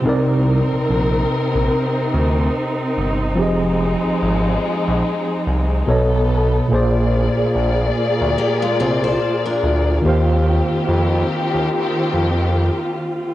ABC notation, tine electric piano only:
X:1
M:4/4
L:1/8
Q:"Swing 16ths" 1/4=72
K:Cm
V:1 name="Tine electric piano"
[C,CEBd]8 | [F,CGAe]6 [=B,,=B,=A^c^d]2 | [B,,B,Acd]8 | [E,B,Gcf]8 |]